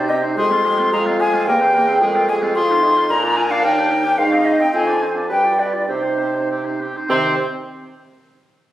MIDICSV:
0, 0, Header, 1, 6, 480
1, 0, Start_track
1, 0, Key_signature, -3, "minor"
1, 0, Tempo, 545455
1, 326, Time_signature, 2, 2, 24, 8
1, 4164, Tempo, 579151
1, 5124, Tempo, 598802
1, 7397, End_track
2, 0, Start_track
2, 0, Title_t, "Flute"
2, 0, Program_c, 0, 73
2, 73, Note_on_c, 0, 75, 96
2, 129, Note_off_c, 0, 75, 0
2, 329, Note_on_c, 0, 84, 117
2, 801, Note_off_c, 0, 84, 0
2, 817, Note_on_c, 0, 82, 118
2, 871, Note_off_c, 0, 82, 0
2, 1056, Note_on_c, 0, 80, 121
2, 1287, Note_off_c, 0, 80, 0
2, 1292, Note_on_c, 0, 79, 127
2, 1993, Note_off_c, 0, 79, 0
2, 2012, Note_on_c, 0, 80, 127
2, 2065, Note_off_c, 0, 80, 0
2, 2245, Note_on_c, 0, 84, 127
2, 2731, Note_on_c, 0, 82, 127
2, 2744, Note_off_c, 0, 84, 0
2, 2961, Note_on_c, 0, 80, 123
2, 2974, Note_off_c, 0, 82, 0
2, 3087, Note_on_c, 0, 77, 127
2, 3100, Note_off_c, 0, 80, 0
2, 3201, Note_on_c, 0, 79, 127
2, 3215, Note_off_c, 0, 77, 0
2, 3679, Note_on_c, 0, 77, 127
2, 3692, Note_off_c, 0, 79, 0
2, 3918, Note_on_c, 0, 75, 120
2, 3931, Note_off_c, 0, 77, 0
2, 4041, Note_off_c, 0, 75, 0
2, 4048, Note_on_c, 0, 79, 118
2, 4165, Note_off_c, 0, 79, 0
2, 4170, Note_on_c, 0, 80, 122
2, 4465, Note_off_c, 0, 80, 0
2, 4643, Note_on_c, 0, 79, 105
2, 4878, Note_on_c, 0, 74, 92
2, 4890, Note_off_c, 0, 79, 0
2, 5111, Note_off_c, 0, 74, 0
2, 5116, Note_on_c, 0, 72, 91
2, 5601, Note_off_c, 0, 72, 0
2, 6094, Note_on_c, 0, 72, 110
2, 6357, Note_off_c, 0, 72, 0
2, 7397, End_track
3, 0, Start_track
3, 0, Title_t, "Oboe"
3, 0, Program_c, 1, 68
3, 0, Note_on_c, 1, 72, 66
3, 83, Note_on_c, 1, 67, 71
3, 97, Note_off_c, 1, 72, 0
3, 207, Note_on_c, 1, 72, 74
3, 220, Note_off_c, 1, 67, 0
3, 327, Note_off_c, 1, 72, 0
3, 333, Note_on_c, 1, 68, 89
3, 453, Note_on_c, 1, 65, 77
3, 466, Note_off_c, 1, 68, 0
3, 572, Note_on_c, 1, 68, 70
3, 585, Note_off_c, 1, 65, 0
3, 690, Note_on_c, 1, 65, 72
3, 703, Note_off_c, 1, 68, 0
3, 810, Note_off_c, 1, 65, 0
3, 816, Note_on_c, 1, 68, 81
3, 931, Note_on_c, 1, 65, 79
3, 945, Note_off_c, 1, 68, 0
3, 1058, Note_on_c, 1, 68, 77
3, 1072, Note_off_c, 1, 65, 0
3, 1177, Note_on_c, 1, 65, 82
3, 1190, Note_off_c, 1, 68, 0
3, 1292, Note_off_c, 1, 65, 0
3, 1307, Note_on_c, 1, 70, 91
3, 1415, Note_on_c, 1, 72, 83
3, 1429, Note_off_c, 1, 70, 0
3, 1538, Note_on_c, 1, 70, 84
3, 1551, Note_off_c, 1, 72, 0
3, 1649, Note_on_c, 1, 72, 85
3, 1662, Note_off_c, 1, 70, 0
3, 1764, Note_off_c, 1, 72, 0
3, 1769, Note_on_c, 1, 68, 95
3, 1896, Note_on_c, 1, 65, 89
3, 1909, Note_off_c, 1, 68, 0
3, 2013, Note_on_c, 1, 68, 83
3, 2027, Note_off_c, 1, 65, 0
3, 2136, Note_on_c, 1, 65, 89
3, 2149, Note_off_c, 1, 68, 0
3, 2247, Note_off_c, 1, 65, 0
3, 2252, Note_on_c, 1, 68, 99
3, 2383, Note_on_c, 1, 65, 90
3, 2396, Note_off_c, 1, 68, 0
3, 2497, Note_on_c, 1, 68, 89
3, 2510, Note_off_c, 1, 65, 0
3, 2614, Note_on_c, 1, 65, 85
3, 2627, Note_off_c, 1, 68, 0
3, 2715, Note_off_c, 1, 65, 0
3, 2721, Note_on_c, 1, 70, 89
3, 2851, Note_on_c, 1, 74, 87
3, 2864, Note_off_c, 1, 70, 0
3, 2967, Note_on_c, 1, 70, 86
3, 2980, Note_off_c, 1, 74, 0
3, 3092, Note_on_c, 1, 74, 83
3, 3105, Note_off_c, 1, 70, 0
3, 3200, Note_off_c, 1, 74, 0
3, 3206, Note_on_c, 1, 70, 98
3, 3335, Note_on_c, 1, 67, 88
3, 3348, Note_off_c, 1, 70, 0
3, 3440, Note_on_c, 1, 70, 86
3, 3453, Note_off_c, 1, 67, 0
3, 3559, Note_on_c, 1, 67, 87
3, 3572, Note_off_c, 1, 70, 0
3, 3680, Note_off_c, 1, 67, 0
3, 3686, Note_on_c, 1, 72, 88
3, 3809, Note_on_c, 1, 75, 82
3, 3822, Note_off_c, 1, 72, 0
3, 3930, Note_on_c, 1, 72, 77
3, 3943, Note_off_c, 1, 75, 0
3, 4050, Note_on_c, 1, 75, 78
3, 4063, Note_off_c, 1, 72, 0
3, 4159, Note_off_c, 1, 75, 0
3, 4164, Note_on_c, 1, 72, 93
3, 4282, Note_on_c, 1, 74, 80
3, 4295, Note_off_c, 1, 72, 0
3, 4404, Note_on_c, 1, 72, 67
3, 4416, Note_off_c, 1, 74, 0
3, 4522, Note_on_c, 1, 74, 70
3, 4534, Note_off_c, 1, 72, 0
3, 4622, Note_off_c, 1, 74, 0
3, 4627, Note_on_c, 1, 71, 73
3, 4753, Note_on_c, 1, 74, 66
3, 4765, Note_off_c, 1, 71, 0
3, 4875, Note_on_c, 1, 71, 62
3, 4887, Note_off_c, 1, 74, 0
3, 4996, Note_on_c, 1, 74, 63
3, 5008, Note_off_c, 1, 71, 0
3, 5112, Note_off_c, 1, 74, 0
3, 5117, Note_on_c, 1, 67, 67
3, 5240, Note_on_c, 1, 72, 60
3, 5252, Note_off_c, 1, 67, 0
3, 5366, Note_on_c, 1, 67, 56
3, 5378, Note_off_c, 1, 72, 0
3, 5492, Note_on_c, 1, 72, 55
3, 5504, Note_off_c, 1, 67, 0
3, 5612, Note_off_c, 1, 72, 0
3, 5617, Note_on_c, 1, 67, 61
3, 5737, Note_on_c, 1, 72, 57
3, 5749, Note_off_c, 1, 67, 0
3, 5861, Note_on_c, 1, 67, 56
3, 5873, Note_off_c, 1, 72, 0
3, 5988, Note_on_c, 1, 72, 58
3, 6000, Note_off_c, 1, 67, 0
3, 6094, Note_off_c, 1, 72, 0
3, 6099, Note_on_c, 1, 72, 105
3, 6296, Note_off_c, 1, 72, 0
3, 7397, End_track
4, 0, Start_track
4, 0, Title_t, "French horn"
4, 0, Program_c, 2, 60
4, 0, Note_on_c, 2, 67, 90
4, 314, Note_off_c, 2, 67, 0
4, 328, Note_on_c, 2, 68, 94
4, 564, Note_off_c, 2, 68, 0
4, 571, Note_on_c, 2, 67, 96
4, 822, Note_on_c, 2, 65, 102
4, 835, Note_off_c, 2, 67, 0
4, 1296, Note_on_c, 2, 67, 100
4, 1309, Note_off_c, 2, 65, 0
4, 1529, Note_on_c, 2, 68, 113
4, 1543, Note_off_c, 2, 67, 0
4, 1775, Note_on_c, 2, 70, 113
4, 1789, Note_off_c, 2, 68, 0
4, 2026, Note_on_c, 2, 68, 113
4, 2040, Note_off_c, 2, 70, 0
4, 2260, Note_on_c, 2, 65, 106
4, 2273, Note_off_c, 2, 68, 0
4, 2488, Note_on_c, 2, 63, 106
4, 2502, Note_off_c, 2, 65, 0
4, 2722, Note_on_c, 2, 62, 122
4, 2735, Note_off_c, 2, 63, 0
4, 3675, Note_off_c, 2, 62, 0
4, 3681, Note_on_c, 2, 63, 105
4, 4155, Note_off_c, 2, 63, 0
4, 4160, Note_on_c, 2, 65, 100
4, 4460, Note_off_c, 2, 65, 0
4, 4633, Note_on_c, 2, 62, 85
4, 5091, Note_off_c, 2, 62, 0
4, 5120, Note_on_c, 2, 63, 72
4, 5843, Note_off_c, 2, 63, 0
4, 6100, Note_on_c, 2, 51, 93
4, 6296, Note_off_c, 2, 51, 0
4, 7397, End_track
5, 0, Start_track
5, 0, Title_t, "Clarinet"
5, 0, Program_c, 3, 71
5, 0, Note_on_c, 3, 63, 73
5, 77, Note_on_c, 3, 60, 73
5, 91, Note_off_c, 3, 63, 0
5, 204, Note_on_c, 3, 63, 75
5, 217, Note_off_c, 3, 60, 0
5, 311, Note_off_c, 3, 63, 0
5, 317, Note_on_c, 3, 56, 85
5, 443, Note_on_c, 3, 60, 72
5, 456, Note_off_c, 3, 56, 0
5, 571, Note_on_c, 3, 56, 77
5, 584, Note_off_c, 3, 60, 0
5, 695, Note_on_c, 3, 60, 76
5, 708, Note_off_c, 3, 56, 0
5, 808, Note_off_c, 3, 60, 0
5, 813, Note_on_c, 3, 56, 84
5, 926, Note_on_c, 3, 60, 75
5, 939, Note_off_c, 3, 56, 0
5, 1055, Note_on_c, 3, 56, 87
5, 1068, Note_off_c, 3, 60, 0
5, 1173, Note_on_c, 3, 60, 80
5, 1187, Note_off_c, 3, 56, 0
5, 1285, Note_off_c, 3, 60, 0
5, 1290, Note_on_c, 3, 58, 95
5, 1405, Note_on_c, 3, 60, 82
5, 1418, Note_off_c, 3, 58, 0
5, 1532, Note_on_c, 3, 58, 85
5, 1546, Note_off_c, 3, 60, 0
5, 1649, Note_on_c, 3, 60, 84
5, 1662, Note_off_c, 3, 58, 0
5, 1767, Note_off_c, 3, 60, 0
5, 1776, Note_on_c, 3, 56, 93
5, 1889, Note_on_c, 3, 60, 84
5, 1902, Note_off_c, 3, 56, 0
5, 2017, Note_on_c, 3, 56, 96
5, 2030, Note_off_c, 3, 60, 0
5, 2134, Note_on_c, 3, 60, 90
5, 2147, Note_off_c, 3, 56, 0
5, 2251, Note_off_c, 3, 60, 0
5, 2258, Note_on_c, 3, 65, 102
5, 2375, Note_on_c, 3, 63, 88
5, 2388, Note_off_c, 3, 65, 0
5, 2486, Note_on_c, 3, 65, 90
5, 2500, Note_off_c, 3, 63, 0
5, 2609, Note_on_c, 3, 63, 89
5, 2622, Note_off_c, 3, 65, 0
5, 2718, Note_off_c, 3, 63, 0
5, 2723, Note_on_c, 3, 65, 91
5, 2844, Note_on_c, 3, 62, 82
5, 2857, Note_off_c, 3, 65, 0
5, 2964, Note_on_c, 3, 65, 90
5, 2977, Note_off_c, 3, 62, 0
5, 3081, Note_on_c, 3, 62, 87
5, 3094, Note_off_c, 3, 65, 0
5, 3196, Note_off_c, 3, 62, 0
5, 3201, Note_on_c, 3, 63, 97
5, 3319, Note_on_c, 3, 62, 84
5, 3332, Note_off_c, 3, 63, 0
5, 3441, Note_on_c, 3, 63, 81
5, 3454, Note_off_c, 3, 62, 0
5, 3561, Note_on_c, 3, 62, 86
5, 3574, Note_off_c, 3, 63, 0
5, 3678, Note_off_c, 3, 62, 0
5, 3684, Note_on_c, 3, 63, 85
5, 3801, Note_on_c, 3, 60, 78
5, 3814, Note_off_c, 3, 63, 0
5, 3927, Note_on_c, 3, 63, 87
5, 3940, Note_off_c, 3, 60, 0
5, 4039, Note_on_c, 3, 60, 74
5, 4052, Note_off_c, 3, 63, 0
5, 4155, Note_off_c, 3, 60, 0
5, 4160, Note_on_c, 3, 60, 92
5, 4267, Note_on_c, 3, 62, 78
5, 4280, Note_off_c, 3, 60, 0
5, 4391, Note_on_c, 3, 60, 72
5, 4404, Note_off_c, 3, 62, 0
5, 4510, Note_on_c, 3, 62, 72
5, 4523, Note_off_c, 3, 60, 0
5, 4627, Note_off_c, 3, 62, 0
5, 4632, Note_on_c, 3, 67, 71
5, 4754, Note_on_c, 3, 65, 64
5, 4766, Note_off_c, 3, 67, 0
5, 4869, Note_on_c, 3, 67, 67
5, 4882, Note_off_c, 3, 65, 0
5, 4992, Note_on_c, 3, 65, 63
5, 5005, Note_off_c, 3, 67, 0
5, 5113, Note_off_c, 3, 65, 0
5, 5118, Note_on_c, 3, 60, 72
5, 5236, Note_on_c, 3, 63, 63
5, 5248, Note_off_c, 3, 60, 0
5, 5353, Note_on_c, 3, 60, 58
5, 5365, Note_off_c, 3, 63, 0
5, 5482, Note_on_c, 3, 63, 59
5, 5494, Note_off_c, 3, 60, 0
5, 5598, Note_off_c, 3, 63, 0
5, 5603, Note_on_c, 3, 60, 63
5, 5720, Note_on_c, 3, 63, 56
5, 5732, Note_off_c, 3, 60, 0
5, 5847, Note_on_c, 3, 60, 58
5, 5859, Note_off_c, 3, 63, 0
5, 5974, Note_on_c, 3, 63, 59
5, 5986, Note_off_c, 3, 60, 0
5, 6082, Note_off_c, 3, 63, 0
5, 6087, Note_on_c, 3, 60, 107
5, 6289, Note_off_c, 3, 60, 0
5, 7397, End_track
6, 0, Start_track
6, 0, Title_t, "Bassoon"
6, 0, Program_c, 4, 70
6, 0, Note_on_c, 4, 48, 85
6, 327, Note_off_c, 4, 48, 0
6, 332, Note_on_c, 4, 41, 95
6, 1296, Note_on_c, 4, 40, 106
6, 1309, Note_off_c, 4, 41, 0
6, 1769, Note_on_c, 4, 41, 106
6, 1782, Note_off_c, 4, 40, 0
6, 2715, Note_off_c, 4, 41, 0
6, 2720, Note_on_c, 4, 46, 116
6, 3195, Note_on_c, 4, 39, 103
6, 3208, Note_off_c, 4, 46, 0
6, 3676, Note_on_c, 4, 44, 100
6, 3690, Note_off_c, 4, 39, 0
6, 3993, Note_off_c, 4, 44, 0
6, 4167, Note_on_c, 4, 41, 97
6, 4633, Note_on_c, 4, 43, 86
6, 4645, Note_off_c, 4, 41, 0
6, 5123, Note_on_c, 4, 48, 76
6, 5135, Note_off_c, 4, 43, 0
6, 5859, Note_off_c, 4, 48, 0
6, 6090, Note_on_c, 4, 48, 115
6, 6291, Note_off_c, 4, 48, 0
6, 7397, End_track
0, 0, End_of_file